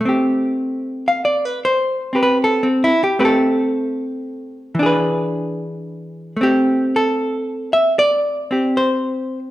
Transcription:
0, 0, Header, 1, 2, 480
1, 0, Start_track
1, 0, Key_signature, 0, "minor"
1, 0, Tempo, 793651
1, 19, Time_signature, 4, 2, 24, 8
1, 5750, End_track
2, 0, Start_track
2, 0, Title_t, "Hollow-body jazz guitar"
2, 0, Program_c, 0, 26
2, 4, Note_on_c, 0, 57, 38
2, 33, Note_on_c, 0, 60, 38
2, 53, Note_on_c, 0, 67, 38
2, 652, Note_on_c, 0, 77, 69
2, 753, Note_off_c, 0, 77, 0
2, 755, Note_on_c, 0, 74, 64
2, 878, Note_off_c, 0, 74, 0
2, 878, Note_on_c, 0, 71, 70
2, 961, Note_off_c, 0, 71, 0
2, 997, Note_on_c, 0, 72, 76
2, 1280, Note_off_c, 0, 60, 0
2, 1287, Note_on_c, 0, 60, 36
2, 1292, Note_off_c, 0, 67, 0
2, 1300, Note_on_c, 0, 67, 37
2, 1302, Note_off_c, 0, 72, 0
2, 1305, Note_on_c, 0, 71, 33
2, 1339, Note_off_c, 0, 71, 0
2, 1347, Note_on_c, 0, 71, 70
2, 1435, Note_off_c, 0, 71, 0
2, 1475, Note_on_c, 0, 69, 67
2, 1584, Note_off_c, 0, 60, 0
2, 1591, Note_on_c, 0, 60, 46
2, 1619, Note_off_c, 0, 69, 0
2, 1718, Note_on_c, 0, 64, 78
2, 1756, Note_off_c, 0, 60, 0
2, 1821, Note_off_c, 0, 64, 0
2, 1829, Note_off_c, 0, 67, 0
2, 1836, Note_on_c, 0, 67, 69
2, 1920, Note_off_c, 0, 67, 0
2, 1922, Note_off_c, 0, 57, 0
2, 1931, Note_on_c, 0, 57, 46
2, 1933, Note_on_c, 0, 60, 43
2, 1937, Note_on_c, 0, 71, 48
2, 1939, Note_on_c, 0, 67, 44
2, 1963, Note_off_c, 0, 71, 0
2, 1965, Note_on_c, 0, 69, 61
2, 2871, Note_on_c, 0, 52, 49
2, 2883, Note_off_c, 0, 69, 0
2, 2890, Note_off_c, 0, 57, 0
2, 2892, Note_off_c, 0, 60, 0
2, 2894, Note_off_c, 0, 67, 0
2, 2899, Note_on_c, 0, 62, 56
2, 2919, Note_on_c, 0, 68, 56
2, 2940, Note_on_c, 0, 71, 55
2, 3850, Note_on_c, 0, 57, 39
2, 3857, Note_off_c, 0, 52, 0
2, 3871, Note_off_c, 0, 62, 0
2, 3877, Note_on_c, 0, 60, 50
2, 3881, Note_off_c, 0, 68, 0
2, 3889, Note_on_c, 0, 67, 70
2, 3892, Note_off_c, 0, 71, 0
2, 4210, Note_off_c, 0, 67, 0
2, 4210, Note_on_c, 0, 69, 69
2, 4673, Note_off_c, 0, 69, 0
2, 4676, Note_on_c, 0, 76, 76
2, 4819, Note_off_c, 0, 76, 0
2, 4831, Note_on_c, 0, 74, 90
2, 5138, Note_off_c, 0, 60, 0
2, 5146, Note_on_c, 0, 60, 34
2, 5154, Note_on_c, 0, 67, 34
2, 5302, Note_off_c, 0, 74, 0
2, 5305, Note_on_c, 0, 72, 71
2, 5677, Note_off_c, 0, 72, 0
2, 5750, Note_off_c, 0, 57, 0
2, 5750, Note_off_c, 0, 60, 0
2, 5750, Note_off_c, 0, 67, 0
2, 5750, End_track
0, 0, End_of_file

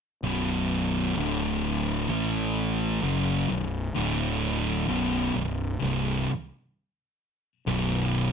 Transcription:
0, 0, Header, 1, 3, 480
1, 0, Start_track
1, 0, Key_signature, 2, "minor"
1, 0, Tempo, 930233
1, 122, Time_signature, 4, 2, 24, 8
1, 4294, End_track
2, 0, Start_track
2, 0, Title_t, "Distorted electric guitar"
2, 0, Program_c, 0, 30
2, 121, Note_on_c, 0, 35, 94
2, 125, Note_on_c, 0, 42, 93
2, 130, Note_on_c, 0, 47, 101
2, 593, Note_off_c, 0, 35, 0
2, 595, Note_off_c, 0, 42, 0
2, 598, Note_off_c, 0, 47, 0
2, 598, Note_on_c, 0, 38, 88
2, 602, Note_on_c, 0, 45, 95
2, 607, Note_on_c, 0, 50, 99
2, 1072, Note_off_c, 0, 38, 0
2, 1073, Note_off_c, 0, 45, 0
2, 1076, Note_off_c, 0, 50, 0
2, 1081, Note_on_c, 0, 45, 88
2, 1085, Note_on_c, 0, 52, 86
2, 1091, Note_on_c, 0, 57, 97
2, 1553, Note_off_c, 0, 45, 0
2, 1555, Note_off_c, 0, 52, 0
2, 1558, Note_off_c, 0, 57, 0
2, 1558, Note_on_c, 0, 42, 84
2, 1564, Note_on_c, 0, 49, 91
2, 1566, Note_on_c, 0, 54, 101
2, 1791, Note_off_c, 0, 42, 0
2, 1794, Note_off_c, 0, 49, 0
2, 1795, Note_off_c, 0, 54, 0
2, 1805, Note_on_c, 0, 35, 66
2, 1805, Note_on_c, 0, 42, 66
2, 1994, Note_off_c, 0, 35, 0
2, 1994, Note_off_c, 0, 42, 0
2, 2034, Note_on_c, 0, 38, 87
2, 2040, Note_on_c, 0, 45, 99
2, 2043, Note_on_c, 0, 50, 102
2, 2510, Note_off_c, 0, 38, 0
2, 2512, Note_off_c, 0, 45, 0
2, 2514, Note_off_c, 0, 50, 0
2, 2517, Note_on_c, 0, 35, 94
2, 2521, Note_on_c, 0, 42, 86
2, 2523, Note_on_c, 0, 47, 110
2, 2751, Note_off_c, 0, 35, 0
2, 2753, Note_off_c, 0, 42, 0
2, 2754, Note_off_c, 0, 47, 0
2, 2757, Note_on_c, 0, 35, 59
2, 2762, Note_on_c, 0, 42, 61
2, 2950, Note_off_c, 0, 35, 0
2, 2953, Note_off_c, 0, 42, 0
2, 2989, Note_on_c, 0, 36, 89
2, 2993, Note_on_c, 0, 43, 88
2, 2997, Note_on_c, 0, 48, 95
2, 3227, Note_off_c, 0, 36, 0
2, 3229, Note_off_c, 0, 43, 0
2, 3231, Note_off_c, 0, 48, 0
2, 3957, Note_on_c, 0, 35, 98
2, 3960, Note_on_c, 0, 42, 91
2, 3961, Note_on_c, 0, 47, 108
2, 4294, Note_off_c, 0, 35, 0
2, 4294, Note_off_c, 0, 42, 0
2, 4294, Note_off_c, 0, 47, 0
2, 4294, End_track
3, 0, Start_track
3, 0, Title_t, "Fingered electric bass"
3, 0, Program_c, 1, 33
3, 119, Note_on_c, 1, 23, 78
3, 579, Note_off_c, 1, 23, 0
3, 602, Note_on_c, 1, 26, 93
3, 1060, Note_off_c, 1, 26, 0
3, 1079, Note_on_c, 1, 33, 96
3, 1539, Note_off_c, 1, 33, 0
3, 1563, Note_on_c, 1, 30, 93
3, 1784, Note_off_c, 1, 30, 0
3, 1803, Note_on_c, 1, 23, 66
3, 2025, Note_off_c, 1, 23, 0
3, 2046, Note_on_c, 1, 26, 82
3, 2502, Note_off_c, 1, 26, 0
3, 2521, Note_on_c, 1, 23, 92
3, 2743, Note_off_c, 1, 23, 0
3, 2762, Note_on_c, 1, 23, 76
3, 2984, Note_off_c, 1, 23, 0
3, 3003, Note_on_c, 1, 24, 97
3, 3225, Note_off_c, 1, 24, 0
3, 3958, Note_on_c, 1, 23, 91
3, 4294, Note_off_c, 1, 23, 0
3, 4294, End_track
0, 0, End_of_file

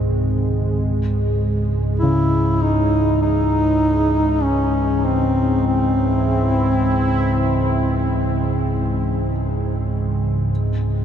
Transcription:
0, 0, Header, 1, 6, 480
1, 0, Start_track
1, 0, Key_signature, 4, "minor"
1, 0, Tempo, 1224490
1, 311, Time_signature, 4, 2, 24, 8
1, 1750, Tempo, 1207243
1, 4368, End_track
2, 0, Start_track
2, 0, Title_t, "Singing bowl"
2, 0, Program_c, 0, 14
2, 0, Note_on_c, 0, 68, 52
2, 4368, Note_off_c, 0, 68, 0
2, 4368, End_track
3, 0, Start_track
3, 0, Title_t, "Duduk"
3, 0, Program_c, 1, 69
3, 781, Note_on_c, 1, 64, 86
3, 1027, Note_on_c, 1, 63, 84
3, 1033, Note_off_c, 1, 64, 0
3, 1259, Note_off_c, 1, 63, 0
3, 1262, Note_on_c, 1, 63, 91
3, 1737, Note_on_c, 1, 61, 83
3, 1742, Note_off_c, 1, 63, 0
3, 1983, Note_on_c, 1, 60, 75
3, 1989, Note_off_c, 1, 61, 0
3, 2226, Note_off_c, 1, 60, 0
3, 2228, Note_on_c, 1, 60, 81
3, 3654, Note_off_c, 1, 60, 0
3, 4368, End_track
4, 0, Start_track
4, 0, Title_t, "Analog synth pad"
4, 0, Program_c, 2, 89
4, 0, Note_on_c, 2, 48, 73
4, 0, Note_on_c, 2, 51, 69
4, 0, Note_on_c, 2, 56, 67
4, 0, Note_on_c, 2, 60, 74
4, 307, Note_off_c, 2, 48, 0
4, 307, Note_on_c, 2, 49, 74
4, 312, Note_off_c, 2, 51, 0
4, 319, Note_off_c, 2, 60, 0
4, 854, Note_on_c, 2, 52, 72
4, 2038, Note_on_c, 2, 64, 84
4, 4148, Note_off_c, 2, 49, 0
4, 4148, Note_on_c, 2, 48, 76
4, 4150, Note_off_c, 2, 52, 0
4, 4150, Note_off_c, 2, 64, 0
4, 4368, Note_off_c, 2, 48, 0
4, 4368, Note_off_c, 2, 56, 0
4, 4368, End_track
5, 0, Start_track
5, 0, Title_t, "Grand piano"
5, 0, Program_c, 3, 0
5, 392, Control_c, 3, 64, 127
5, 795, Note_on_c, 3, 49, 43
5, 3673, Note_off_c, 3, 49, 0
5, 4156, Control_c, 3, 64, 0
5, 4232, Control_c, 3, 64, 127
5, 4368, End_track
6, 0, Start_track
6, 0, Title_t, "Synth drone"
6, 0, Program_c, 4, 95
6, 0, Note_on_c, 4, 37, 66
6, 0, Note_on_c, 4, 44, 69
6, 4368, Note_off_c, 4, 37, 0
6, 4368, Note_off_c, 4, 44, 0
6, 4368, End_track
0, 0, End_of_file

